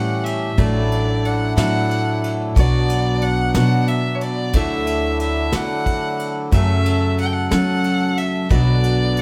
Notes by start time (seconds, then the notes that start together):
Already playing: A2 E3 G3 A3 C#4 G4 F#5
0.24 E5, ride
0.57 A1 A2 F#3 A3 D4 E4 D5, kick, ride
0.92 ride
1.25 F#5, ride
1.57 A2 F#3 A3 D4 E4 F#5, snare, ride
1.91 ride
2.24 ride
2.56 B1 B2 F#3 B3 D4 F#4 D5, kick, ride
2.89 ride
3.22 F#5, ride
3.54 B2 F#3 B3 D4 F#4 F#5, snare, ride
3.88 E5, ride
4.15 C#5
4.21 D5, ride
4.53 D2 D3 A3 D4 E4 F#4 E5, kick, ride
4.87 ride
5.20 E5, ride
5.52 D3 A3 E4 F#4 F#5, snare, ride
5.86 kick, ride
6.19 ride
6.51 F#2 C#3 F#3 A3 C#4 A4 E5, kick, ride
6.86 ride
7.18 F#5, ride
7.26 G5
7.33 F#5
7.51 F#2 C#3 F#3 A3 C#4 A4 F#5, snare, ride
7.84 ride
8.17 E5, ride
8.49 B1 B2 D3 F#3 B3 D4 F#4 D5, kick, ride
8.84 ride
9.17 ride